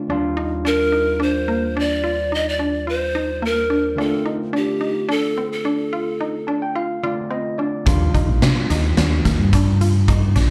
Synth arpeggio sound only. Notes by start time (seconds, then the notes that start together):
0.10 D4
0.37 D#4
0.65 D4
0.92 D#4
1.20 D4
1.48 A#3
1.77 D4
2.04 F4
2.32 D#4
2.59 D4
2.87 F4
3.15 D#4
3.42 A#3
3.70 D4
3.98 D4
4.26 D#4
4.53 D4
4.81 D#4
5.09 D4
5.38 C4
5.65 D4
5.93 F4
6.21 D#4
6.48 D4
6.75 F4
7.03 F4
7.30 C4
7.59 D4
7.86 D4
8.14 D#4
8.43 D4
8.70 D#4
8.98 D4
9.25 A#3
9.54 D4
9.81 F4
10.08 D#4
10.36 D4